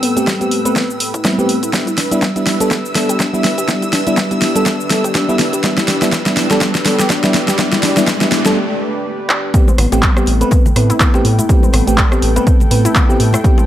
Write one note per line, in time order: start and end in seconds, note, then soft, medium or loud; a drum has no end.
0.00 1.70 A3 medium
0.00 0.10 B3 medium
0.00 1.70 A4 medium
0.00 9.50 B4 medium
0.00 1.70 G5 medium
0.00 1.72 E6 medium
0.00 open hi-hat loud
0.16 0.28 A3 medium
0.16 0.28 B3 medium
0.16 0.28 C4 medium
0.16 0.28 G4 loud
0.16 closed hi-hat soft
0.16 shaker medium
0.27 0.32 G3 loud
0.27 kick loud
0.27 snare medium
0.27 closed hi-hat medium
0.27 shaker medium
0.41 0.61 A3 medium
0.41 0.61 B3 medium
0.41 0.61 C4 medium
0.41 0.61 G4 medium
0.41 closed hi-hat soft
0.41 shaker soft
0.51 open hi-hat loud
0.65 0.86 A3 loud
0.65 0.86 B3 medium
0.65 0.86 C4 medium
0.65 0.86 B4 loud
0.65 closed hi-hat medium
0.65 shaker medium
0.76 kick loud
0.76 snare medium
0.76 closed hi-hat medium
0.76 shaker medium
0.90 shaker soft
1.00 open hi-hat loud
1.14 1.20 E4 loud
1.14 kick medium
1.14 closed hi-hat soft
1.14 shaker medium
1.25 1.29 G3 loud
1.25 1.36 A3 medium
1.25 1.36 B3 medium
1.25 1.37 C4 medium
1.25 1.37 E4 medium
1.25 kick loud
1.25 snare medium
1.25 closed hi-hat medium
1.25 shaker medium
1.38 1.59 A3 medium
1.38 1.59 B3 medium
1.38 1.59 C4 medium
1.38 1.59 G4 loud
1.38 shaker soft
1.49 open hi-hat loud
1.63 1.69 E4 medium
1.63 closed hi-hat medium
1.63 shaker medium
1.73 1.88 G3 medium
1.73 1.81 G3 medium
1.73 1.88 B3 medium
1.73 1.88 D4 medium
1.73 9.50 D4 medium
1.73 1.88 E4 medium
1.73 9.50 G4 medium
1.73 5.60 E5 medium
1.73 8.56 E6 medium
1.73 kick loud
1.73 snare medium
1.73 closed hi-hat medium
1.73 riser medium
1.73 shaker medium
1.87 1.93 E4 medium
1.87 closed hi-hat soft
1.87 shaker soft
1.98 2.05 D4 medium
1.98 snare medium
1.98 open hi-hat loud
2.11 2.23 G3 medium
2.11 2.23 B3 medium
2.11 2.23 D4 medium
2.11 2.23 E4 loud
2.11 closed hi-hat soft
2.11 shaker medium
2.22 2.27 G3 loud
2.22 kick loud
2.22 snare medium
2.22 closed hi-hat medium
2.22 shaker medium
2.36 2.56 G3 medium
2.36 2.56 B3 medium
2.36 2.56 D4 medium
2.36 2.57 E4 medium
2.36 closed hi-hat soft
2.36 shaker soft
2.46 snare medium
2.46 open hi-hat loud
2.60 2.81 G3 medium
2.60 2.81 B3 medium
2.60 2.81 D4 medium
2.60 2.81 A4 loud
2.60 closed hi-hat medium
2.60 shaker medium
2.71 kick loud
2.71 snare medium
2.71 closed hi-hat medium
2.71 shaker medium
2.85 shaker soft
2.95 3.30 G3 medium
2.95 3.30 B3 medium
2.95 3.30 D4 medium
2.95 3.30 A4 medium
2.95 snare medium
2.95 open hi-hat loud
3.09 3.15 G4 loud
3.09 closed hi-hat medium
3.09 shaker medium
3.20 3.31 D4 medium
3.20 kick loud
3.20 snare medium
3.20 closed hi-hat medium
3.20 shaker medium
3.33 3.45 G3 loud
3.33 3.45 B3 medium
3.33 3.45 D4 medium
3.33 3.45 E4 loud
3.33 shaker soft
3.44 snare medium
3.44 open hi-hat loud
3.58 3.64 G4 medium
3.58 closed hi-hat medium
3.58 shaker medium
3.68 3.83 G3 medium
3.68 3.76 G3 medium
3.68 3.83 B3 medium
3.68 3.83 D4 medium
3.68 3.83 E4 medium
3.68 kick loud
3.68 snare medium
3.68 closed hi-hat medium
3.68 shaker medium
3.82 3.88 E4 medium
3.82 closed hi-hat soft
3.82 shaker soft
3.93 4.00 D4 medium
3.93 snare medium
3.93 open hi-hat loud
4.07 4.18 G3 medium
4.07 4.18 B3 medium
4.07 4.19 D4 medium
4.07 4.19 E4 loud
4.07 closed hi-hat medium
4.07 shaker medium
4.17 4.22 G3 loud
4.17 kick loud
4.17 snare medium
4.17 closed hi-hat medium
4.17 shaker medium
4.31 4.51 G3 medium
4.31 4.52 B3 medium
4.31 4.52 D4 medium
4.31 4.52 E4 medium
4.31 closed hi-hat soft
4.31 shaker soft
4.42 snare medium
4.42 open hi-hat loud
4.56 4.76 G3 loud
4.56 4.76 B3 medium
4.56 4.76 D4 medium
4.56 4.76 A4 loud
4.56 closed hi-hat medium
4.56 shaker medium
4.66 kick loud
4.66 snare medium
4.66 closed hi-hat medium
4.66 shaker medium
4.81 shaker soft
4.90 5.25 G3 medium
4.90 5.25 B3 medium
4.90 5.26 D4 medium
4.90 5.26 A4 medium
4.90 snare medium
4.90 open hi-hat loud
5.04 5.10 G4 loud
5.04 kick medium
5.04 closed hi-hat medium
5.04 shaker medium
5.15 5.26 D4 medium
5.15 kick loud
5.15 snare medium
5.15 closed hi-hat medium
5.15 shaker medium
5.29 5.40 G3 loud
5.29 5.40 B3 medium
5.29 5.41 D4 medium
5.29 5.41 E4 loud
5.29 shaker soft
5.39 snare medium
5.39 open hi-hat loud
5.53 5.59 G4 medium
5.53 closed hi-hat medium
5.53 shaker medium
5.64 5.78 G3 medium
5.64 5.71 G3 medium
5.64 5.78 B3 medium
5.64 5.78 D4 medium
5.64 5.79 E4 medium
5.64 9.50 D5 medium
5.64 kick loud
5.64 snare medium
5.64 closed hi-hat medium
5.64 shaker medium
5.78 5.83 E4 medium
5.78 snare medium
5.78 closed hi-hat soft
5.78 shaker soft
5.88 5.96 D4 medium
5.88 snare medium
5.88 open hi-hat loud
6.02 6.13 G3 medium
6.02 6.14 B3 medium
6.02 6.14 D4 medium
6.02 6.14 E4 loud
6.02 snare medium
6.02 closed hi-hat medium
6.02 shaker medium
6.12 6.17 G3 loud
6.12 kick loud
6.12 snare medium
6.12 closed hi-hat medium
6.12 shaker medium
6.26 6.46 G3 medium
6.26 6.47 B3 medium
6.26 6.47 D4 medium
6.26 6.47 E4 medium
6.26 snare medium
6.26 closed hi-hat soft
6.26 shaker soft
6.37 snare medium
6.37 open hi-hat loud
6.50 6.71 G3 loud
6.50 6.71 B3 medium
6.50 6.71 D4 medium
6.50 6.71 A4 loud
6.50 snare medium
6.50 closed hi-hat medium
6.50 shaker medium
6.61 kick loud
6.61 snare loud
6.61 closed hi-hat medium
6.61 shaker medium
6.75 snare medium
6.75 shaker soft
6.85 7.20 G3 medium
6.85 7.21 B3 medium
6.85 7.21 D4 medium
6.85 7.21 A4 medium
6.85 snare loud
6.85 open hi-hat loud
6.99 7.05 G4 loud
6.99 snare medium
6.99 closed hi-hat medium
6.99 shaker medium
7.10 7.21 D4 medium
7.10 kick loud
7.10 snare loud
7.10 closed hi-hat medium
7.10 shaker medium
7.24 7.35 G3 loud
7.24 7.35 B3 medium
7.24 7.36 D4 medium
7.24 7.36 E4 loud
7.24 snare medium
7.24 shaker soft
7.34 snare loud
7.34 open hi-hat loud
7.48 7.54 G4 medium
7.48 snare medium
7.48 closed hi-hat medium
7.48 shaker medium
7.58 7.73 G3 medium
7.58 7.66 G3 medium
7.58 7.73 B3 medium
7.58 7.74 D4 medium
7.58 7.74 E4 medium
7.58 kick loud
7.58 snare loud
7.58 closed hi-hat medium
7.58 shaker medium
7.72 7.78 E4 medium
7.72 snare medium
7.72 closed hi-hat soft
7.72 shaker soft
7.83 7.91 D4 medium
7.83 snare loud
7.83 open hi-hat loud
7.97 8.09 G3 medium
7.97 8.09 B3 medium
7.97 8.09 D4 medium
7.97 8.09 E4 loud
7.97 snare medium
7.97 closed hi-hat medium
7.97 shaker medium
8.07 8.12 G3 loud
8.07 kick loud
8.07 snare loud
8.07 closed hi-hat medium
8.07 shaker medium
8.21 8.42 G3 medium
8.21 8.42 B3 medium
8.21 8.42 D4 medium
8.21 8.42 E4 loud
8.21 snare medium
8.21 closed hi-hat soft
8.21 shaker soft
8.32 snare loud
8.32 open hi-hat loud
8.46 8.56 G3 loud
8.46 8.56 B3 medium
8.46 8.56 D4 medium
8.46 8.56 A4 loud
8.46 snare loud
8.46 closed hi-hat medium
8.46 shaker medium
9.29 clap medium
9.54 9.61 G3 medium
9.54 9.69 A3 medium
9.54 13.66 A3 medium
9.54 9.69 B3 medium
9.54 9.69 C4 medium
9.54 9.69 G4 medium
9.54 13.66 A4 medium
9.54 13.66 B4 medium
9.54 13.66 G5 medium
9.54 kick loud
9.54 closed hi-hat medium
9.54 shaker medium
9.68 9.74 C4 medium
9.68 high bongo medium
9.68 high conga medium
9.68 shaker soft
9.78 9.87 A1 loud
9.78 9.86 B3 medium
9.78 cross-stick medium
9.78 open hi-hat loud
9.78 low conga medium
9.92 10.06 A1 medium
9.92 10.04 A3 medium
9.92 10.04 B3 medium
9.92 10.04 C4 medium
9.92 10.04 G4 loud
9.92 closed hi-hat medium
9.92 high bongo medium
9.92 shaker medium
10.02 10.07 G3 loud
10.02 kick loud
10.02 clap loud
10.02 closed hi-hat medium
10.02 shaker medium
10.16 10.37 A3 medium
10.16 10.37 B3 medium
10.16 10.37 C4 medium
10.16 10.37 G4 medium
10.16 cross-stick medium
10.16 shaker soft
10.26 10.43 A1 loud
10.26 open hi-hat loud
10.26 high bongo medium
10.41 10.61 A3 loud
10.41 10.62 B3 medium
10.41 10.62 C4 medium
10.41 10.62 B4 loud
10.41 closed hi-hat medium
10.41 shaker medium
10.51 kick loud
10.51 closed hi-hat medium
10.51 high bongo medium
10.51 shaker medium
10.66 high conga loud
10.66 low conga loud
10.66 shaker soft
10.76 10.92 A2 medium
10.76 11.11 A3 medium
10.76 11.11 B3 medium
10.76 11.11 C4 medium
10.76 11.11 B4 medium
10.76 cross-stick medium
10.76 open hi-hat loud
10.90 10.95 E4 loud
10.90 closed hi-hat medium
10.90 high bongo soft
10.90 shaker medium
11.00 11.12 B3 medium
11.00 kick loud
11.00 clap loud
11.00 closed hi-hat medium
11.00 low conga medium
11.00 shaker medium
11.14 11.26 A3 loud
11.14 11.26 B3 medium
11.14 11.26 C4 medium
11.14 11.26 G4 loud
11.14 high bongo medium
11.14 shaker soft
11.25 11.41 A2 loud
11.25 open hi-hat loud
11.38 11.44 E4 medium
11.38 closed hi-hat medium
11.38 high conga medium
11.38 shaker medium
11.49 11.57 G3 medium
11.49 11.64 A3 medium
11.49 11.64 B3 medium
11.49 11.64 C4 medium
11.49 11.64 G4 medium
11.49 kick loud
11.49 closed hi-hat medium
11.49 high bongo medium
11.49 shaker medium
11.63 11.69 C4 medium
11.63 high conga loud
11.63 shaker soft
11.73 11.82 A1 loud
11.73 11.81 B3 medium
11.73 cross-stick medium
11.73 open hi-hat loud
11.73 high bongo medium
11.73 low conga medium
11.87 12.01 A1 medium
11.87 11.99 A3 medium
11.87 11.99 B3 medium
11.87 11.99 C4 medium
11.87 11.99 G4 loud
11.87 closed hi-hat medium
11.87 shaker medium
11.98 12.02 G3 loud
11.98 kick loud
11.98 clap loud
11.98 closed hi-hat medium
11.98 shaker medium
12.12 12.32 A3 medium
12.12 12.32 B3 medium
12.12 12.32 C4 medium
12.12 12.32 G4 medium
12.12 cross-stick medium
12.12 high bongo soft
12.12 shaker soft
12.22 12.38 A1 loud
12.22 open hi-hat loud
12.36 12.57 A3 medium
12.36 12.57 B3 medium
12.36 12.57 C4 medium
12.36 12.57 B4 loud
12.36 closed hi-hat medium
12.36 high bongo medium
12.36 shaker medium
12.47 kick loud
12.47 closed hi-hat medium
12.47 shaker medium
12.60 high conga medium
12.60 low conga medium
12.60 shaker soft
12.71 12.87 A2 loud
12.71 13.06 A3 medium
12.71 13.06 B3 medium
12.71 13.06 C4 medium
12.71 13.06 B4 medium
12.71 open hi-hat loud
12.71 high bongo medium
12.85 12.91 E4 loud
12.85 closed hi-hat medium
12.85 shaker medium
12.95 13.07 B3 medium
12.95 kick loud
12.95 clap loud
12.95 closed hi-hat medium
12.95 high bongo medium
12.95 low conga medium
12.95 shaker medium
13.09 13.21 A3 loud
13.09 13.21 B3 medium
13.09 13.21 C4 medium
13.09 13.21 G4 loud
13.09 shaker soft
13.20 13.36 A2 medium
13.20 open hi-hat loud
13.33 13.39 E4 medium
13.33 cross-stick medium
13.33 closed hi-hat medium
13.33 high bongo medium
13.33 high conga medium
13.33 shaker medium
13.44 13.52 G3 medium
13.44 13.59 A3 medium
13.44 13.59 B3 medium
13.44 13.59 C4 medium
13.44 13.59 G4 medium
13.44 kick loud
13.44 closed hi-hat medium
13.44 shaker medium
13.58 13.64 C4 medium
13.58 high bongo medium
13.58 high conga medium
13.58 shaker soft